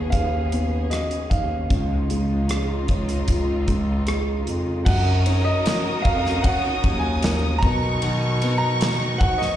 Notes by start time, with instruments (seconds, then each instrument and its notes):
Already playing: bass clarinet D#2, string section D#3 B3 C#4 G#4, felt piano D#3 B3 F#4 G#4, grand piano G#5
0.10 bass clarinet D#2, felt piano D#4, grand piano F5, kick, closed hi-hat
0.52 felt piano B3, closed hi-hat
0.90 felt piano F#4, grand piano D#5, cross-stick, closed hi-hat
1.11 closed hi-hat
1.30 bass clarinet D#2, felt piano D#4, grand piano F5, kick, closed hi-hat
1.69 bass clarinet C#2, string section C#3 D#4 F4, felt piano C#3, kick, closed hi-hat
2.10 felt piano G#3, closed hi-hat
2.29 bass clarinet C#2
2.49 felt piano G#4, cross-stick, closed hi-hat
2.88 bass clarinet C#2, felt piano C#5, kick, closed hi-hat
3.09 cross-stick, closed hi-hat
3.28 bass clarinet C#2, felt piano F4, kick, closed hi-hat
3.68 felt piano G#3, kick, closed hi-hat
4.07 felt piano G#4, cross-stick, closed hi-hat
4.46 bass clarinet F2, felt piano F4, closed hi-hat
4.85 bass clarinet F#2, steel-string acoustic guitar F#3 C#4 D#4 A#4, string section C#4 D#4 F#4 A#4, felt piano F#4, grand piano F#5, violin section D#6, kick, crash
5.26 steel-string acoustic guitar F#3 C#4 D#4 A#4, felt piano C#4, ride
5.45 grand piano D#5
5.65 steel-string acoustic guitar F#3 C#4 D#4 A#4, felt piano A#4, snare, ride
6.02 bass clarinet F2, grand piano F5, kick, ride
6.25 steel-string acoustic guitar C#4 D#4 A#4, snare
6.42 felt piano C#5, grand piano F#5, kick, ride
6.64 steel-string acoustic guitar C#4 D#4 A#4
6.84 bass clarinet D#2, steel-string acoustic guitar F#3 C#4 D#4 A#4, kick, ride
6.99 grand piano G#5
7.22 steel-string acoustic guitar F#3 C#4 D#4 A#4, felt piano A#4, snare, ride
7.42 steel-string acoustic guitar C#4 D#4 A#4
7.58 steel-string acoustic guitar F#3, grand piano A#5
7.62 bass clarinet B2, string section F#3, steel-string acoustic guitar B3 D#4 A#4, felt piano B3, violin section C#6, kick, ride
7.82 steel-string acoustic guitar F#3 B3 D#4 A#4
8.02 steel-string acoustic guitar B2 D#3 F#3 B3 D#4 A#4, felt piano F#4, ride
8.42 steel-string acoustic guitar F#3 B3 D#4 A#4, felt piano B3, ride
8.58 grand piano A#5
8.81 steel-string acoustic guitar B2 D#3 F#3 B3 D#4 A#4, snare, ride
9.18 bass clarinet G#2, felt piano F#4, grand piano F#5, kick, ride
9.38 steel-string acoustic guitar F#3 B3 D#4 A#4, grand piano D#5, snare